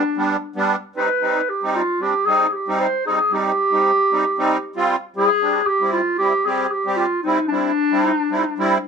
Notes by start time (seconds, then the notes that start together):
Already playing: D4
0.17 G3 B3 D4
0.56 G3 B3 D4
0.96 G3 C4 D#4 B4
1.22 G3 C4 D#4
1.49 G4
1.63 G3 C4 D#4
1.76 F4
2.00 G3 C4 D4 G4
2.26 G3 C4 D#4 G#4
2.47 G#4
2.53 G4
2.68 G3 C4 D#4
2.80 C5
3.06 G3 C4 D#4 G#4
3.31 G3 C4 D#4 G4
3.72 G3 C4 D#4
4.12 G3 C4 D#4
4.38 G3 C4 D#4
4.76 G3 C4 F4
5.16 G3 C4 E4 G#4
5.41 G3 C4 D4
5.67 G4
5.81 G3 C4 E4
5.92 F4
6.19 G3 C4 E4 G4
6.46 G3 C4 G4 G#4
6.72 G4
6.85 G3 C4 G4
6.96 F4
7.23 G3 C4 D#4 E4
7.48 G3 C4 D4 E4
7.91 G3 C4 E4
8.05 D#4
8.17 D4
8.30 G3 C4 E4
8.36 D#4
8.48 D4
8.58 G3 C4 E4